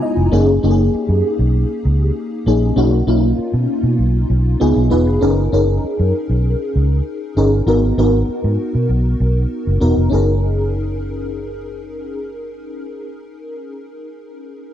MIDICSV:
0, 0, Header, 1, 4, 480
1, 0, Start_track
1, 0, Key_signature, 6, "major"
1, 0, Tempo, 612245
1, 258, Time_signature, 4, 2, 24, 8
1, 11553, End_track
2, 0, Start_track
2, 0, Title_t, "FM electric piano"
2, 0, Program_c, 0, 5
2, 0, Control_c, 0, 64, 127
2, 0, Note_on_c, 0, 56, 76
2, 0, Note_on_c, 0, 59, 73
2, 0, Note_on_c, 0, 63, 72
2, 0, Note_on_c, 0, 64, 69
2, 0, Note_on_c, 0, 65, 88
2, 0, Note_on_c, 0, 80, 72
2, 0, Note_on_c, 0, 82, 68
2, 17, Note_on_c, 0, 75, 67
2, 240, Note_off_c, 0, 75, 0
2, 247, Note_on_c, 0, 58, 83
2, 250, Note_on_c, 0, 61, 80
2, 254, Note_off_c, 0, 63, 0
2, 254, Note_on_c, 0, 63, 83
2, 259, Note_on_c, 0, 68, 99
2, 266, Control_c, 0, 64, 0
2, 267, Note_off_c, 0, 56, 0
2, 268, Note_off_c, 0, 65, 0
2, 268, Note_off_c, 0, 82, 0
2, 270, Note_off_c, 0, 59, 0
2, 271, Note_off_c, 0, 64, 0
2, 272, Note_off_c, 0, 80, 0
2, 416, Note_off_c, 0, 58, 0
2, 417, Note_off_c, 0, 61, 0
2, 420, Note_off_c, 0, 63, 0
2, 422, Note_off_c, 0, 68, 0
2, 426, Control_c, 0, 64, 127
2, 493, Note_on_c, 0, 58, 81
2, 495, Note_on_c, 0, 61, 76
2, 495, Note_on_c, 0, 63, 73
2, 501, Note_on_c, 0, 67, 72
2, 550, Note_off_c, 0, 67, 0
2, 553, Note_on_c, 0, 68, 89
2, 1150, Note_off_c, 0, 58, 0
2, 1152, Note_off_c, 0, 61, 0
2, 1152, Note_off_c, 0, 63, 0
2, 1181, Note_off_c, 0, 68, 0
2, 1931, Note_on_c, 0, 58, 79
2, 1936, Note_on_c, 0, 61, 72
2, 1940, Note_on_c, 0, 63, 77
2, 1943, Note_on_c, 0, 68, 92
2, 2097, Note_off_c, 0, 58, 0
2, 2100, Note_off_c, 0, 61, 0
2, 2102, Note_off_c, 0, 63, 0
2, 2103, Note_off_c, 0, 68, 0
2, 2164, Note_on_c, 0, 58, 89
2, 2168, Note_on_c, 0, 61, 80
2, 2171, Note_on_c, 0, 63, 80
2, 2178, Note_on_c, 0, 66, 101
2, 2188, Control_c, 0, 64, 0
2, 2334, Note_off_c, 0, 58, 0
2, 2336, Note_off_c, 0, 61, 0
2, 2337, Note_off_c, 0, 63, 0
2, 2341, Note_off_c, 0, 66, 0
2, 2345, Control_c, 0, 64, 127
2, 2407, Note_on_c, 0, 58, 83
2, 2410, Note_on_c, 0, 61, 74
2, 2413, Note_on_c, 0, 63, 76
2, 2416, Note_on_c, 0, 65, 97
2, 3067, Note_off_c, 0, 58, 0
2, 3068, Note_off_c, 0, 61, 0
2, 3070, Note_off_c, 0, 63, 0
2, 3071, Note_off_c, 0, 65, 0
2, 3606, Note_on_c, 0, 59, 93
2, 3613, Note_on_c, 0, 63, 84
2, 3613, Note_on_c, 0, 65, 80
2, 3615, Note_on_c, 0, 68, 104
2, 3625, Control_c, 0, 64, 0
2, 3772, Control_c, 0, 64, 127
2, 3803, Note_off_c, 0, 59, 0
2, 3806, Note_off_c, 0, 63, 0
2, 3806, Note_off_c, 0, 65, 0
2, 3807, Note_off_c, 0, 68, 0
2, 3842, Note_on_c, 0, 59, 81
2, 3845, Note_on_c, 0, 63, 76
2, 3850, Note_on_c, 0, 65, 75
2, 3850, Note_on_c, 0, 71, 92
2, 4012, Note_off_c, 0, 59, 0
2, 4014, Note_off_c, 0, 63, 0
2, 4016, Note_off_c, 0, 71, 0
2, 4017, Note_off_c, 0, 65, 0
2, 4085, Note_on_c, 0, 61, 90
2, 4090, Note_on_c, 0, 63, 77
2, 4092, Note_on_c, 0, 68, 80
2, 4096, Note_on_c, 0, 70, 94
2, 4106, Control_c, 0, 64, 0
2, 4254, Note_off_c, 0, 61, 0
2, 4254, Control_c, 0, 64, 127
2, 4256, Note_off_c, 0, 63, 0
2, 4257, Note_off_c, 0, 68, 0
2, 4259, Note_off_c, 0, 70, 0
2, 4331, Note_on_c, 0, 61, 89
2, 4337, Note_on_c, 0, 63, 78
2, 4339, Note_on_c, 0, 68, 75
2, 4345, Note_on_c, 0, 70, 85
2, 4988, Note_off_c, 0, 61, 0
2, 4991, Note_off_c, 0, 63, 0
2, 4992, Note_off_c, 0, 68, 0
2, 4995, Note_off_c, 0, 70, 0
2, 5776, Note_on_c, 0, 63, 77
2, 5777, Note_on_c, 0, 61, 78
2, 5778, Note_on_c, 0, 68, 72
2, 5786, Note_on_c, 0, 70, 88
2, 5939, Note_off_c, 0, 63, 0
2, 5940, Note_off_c, 0, 61, 0
2, 5940, Note_off_c, 0, 68, 0
2, 5944, Note_off_c, 0, 70, 0
2, 6012, Note_on_c, 0, 59, 86
2, 6016, Note_on_c, 0, 63, 78
2, 6017, Note_on_c, 0, 66, 78
2, 6022, Note_on_c, 0, 70, 92
2, 6025, Control_c, 0, 64, 0
2, 6138, Control_c, 0, 64, 127
2, 6177, Note_off_c, 0, 59, 0
2, 6179, Note_off_c, 0, 63, 0
2, 6179, Note_off_c, 0, 66, 0
2, 6182, Note_off_c, 0, 70, 0
2, 6257, Note_on_c, 0, 59, 86
2, 6259, Note_on_c, 0, 63, 69
2, 6262, Note_on_c, 0, 66, 76
2, 6265, Note_on_c, 0, 70, 87
2, 6911, Note_off_c, 0, 59, 0
2, 6912, Note_off_c, 0, 63, 0
2, 6913, Note_off_c, 0, 66, 0
2, 6915, Note_off_c, 0, 70, 0
2, 7686, Note_on_c, 0, 59, 77
2, 7690, Note_on_c, 0, 63, 72
2, 7693, Note_on_c, 0, 66, 70
2, 7695, Note_on_c, 0, 70, 87
2, 7854, Note_off_c, 0, 59, 0
2, 7856, Note_off_c, 0, 63, 0
2, 7857, Note_off_c, 0, 66, 0
2, 7858, Note_off_c, 0, 70, 0
2, 7915, Note_on_c, 0, 61, 79
2, 7927, Note_on_c, 0, 63, 76
2, 7940, Note_on_c, 0, 68, 72
2, 7944, Control_c, 0, 64, 0
2, 7952, Note_on_c, 0, 70, 91
2, 8101, Control_c, 0, 64, 127
2, 10689, Note_off_c, 0, 61, 0
2, 10701, Note_off_c, 0, 63, 0
2, 10714, Note_off_c, 0, 68, 0
2, 10726, Note_off_c, 0, 70, 0
2, 11553, End_track
3, 0, Start_track
3, 0, Title_t, "Fingered electric bass"
3, 0, Program_c, 1, 33
3, 132, Note_on_c, 1, 29, 82
3, 230, Note_off_c, 1, 29, 0
3, 255, Note_on_c, 1, 30, 106
3, 446, Note_off_c, 1, 30, 0
3, 499, Note_on_c, 1, 30, 104
3, 689, Note_off_c, 1, 30, 0
3, 852, Note_on_c, 1, 42, 104
3, 949, Note_off_c, 1, 42, 0
3, 1090, Note_on_c, 1, 35, 87
3, 1283, Note_off_c, 1, 35, 0
3, 1452, Note_on_c, 1, 37, 92
3, 1644, Note_off_c, 1, 37, 0
3, 1932, Note_on_c, 1, 34, 91
3, 2124, Note_off_c, 1, 34, 0
3, 2165, Note_on_c, 1, 35, 101
3, 2360, Note_off_c, 1, 35, 0
3, 2407, Note_on_c, 1, 35, 99
3, 2601, Note_off_c, 1, 35, 0
3, 2772, Note_on_c, 1, 47, 103
3, 2869, Note_off_c, 1, 47, 0
3, 3005, Note_on_c, 1, 47, 94
3, 3105, Note_off_c, 1, 47, 0
3, 3127, Note_on_c, 1, 35, 89
3, 3321, Note_off_c, 1, 35, 0
3, 3370, Note_on_c, 1, 35, 107
3, 3563, Note_off_c, 1, 35, 0
3, 3617, Note_on_c, 1, 37, 92
3, 3711, Note_off_c, 1, 37, 0
3, 3734, Note_on_c, 1, 35, 98
3, 3830, Note_off_c, 1, 35, 0
3, 3854, Note_on_c, 1, 28, 100
3, 3971, Note_off_c, 1, 28, 0
3, 3971, Note_on_c, 1, 29, 92
3, 4068, Note_off_c, 1, 29, 0
3, 4095, Note_on_c, 1, 30, 109
3, 4286, Note_off_c, 1, 30, 0
3, 4333, Note_on_c, 1, 30, 100
3, 4524, Note_off_c, 1, 30, 0
3, 4701, Note_on_c, 1, 42, 96
3, 4794, Note_off_c, 1, 42, 0
3, 4935, Note_on_c, 1, 35, 92
3, 5125, Note_off_c, 1, 35, 0
3, 5297, Note_on_c, 1, 37, 93
3, 5486, Note_off_c, 1, 37, 0
3, 5775, Note_on_c, 1, 31, 89
3, 5965, Note_off_c, 1, 31, 0
3, 6009, Note_on_c, 1, 32, 102
3, 6202, Note_off_c, 1, 32, 0
3, 6253, Note_on_c, 1, 32, 103
3, 6444, Note_off_c, 1, 32, 0
3, 6618, Note_on_c, 1, 44, 96
3, 6712, Note_off_c, 1, 44, 0
3, 6858, Note_on_c, 1, 47, 88
3, 6952, Note_off_c, 1, 47, 0
3, 6972, Note_on_c, 1, 35, 82
3, 7163, Note_off_c, 1, 35, 0
3, 7215, Note_on_c, 1, 35, 92
3, 7405, Note_off_c, 1, 35, 0
3, 7582, Note_on_c, 1, 30, 82
3, 7674, Note_off_c, 1, 30, 0
3, 7696, Note_on_c, 1, 28, 91
3, 7791, Note_off_c, 1, 28, 0
3, 7816, Note_on_c, 1, 29, 85
3, 7910, Note_off_c, 1, 29, 0
3, 7934, Note_on_c, 1, 30, 93
3, 10708, Note_off_c, 1, 30, 0
3, 11553, End_track
4, 0, Start_track
4, 0, Title_t, "Muted fingered electric bass strokes"
4, 739, Note_on_c, 9, 29, 44
4, 817, Note_off_c, 9, 29, 0
4, 2655, Note_on_c, 9, 29, 47
4, 2733, Note_off_c, 9, 29, 0
4, 4581, Note_on_c, 9, 29, 44
4, 4659, Note_off_c, 9, 29, 0
4, 6497, Note_on_c, 9, 29, 44
4, 6576, Note_off_c, 9, 29, 0
4, 11553, End_track
0, 0, End_of_file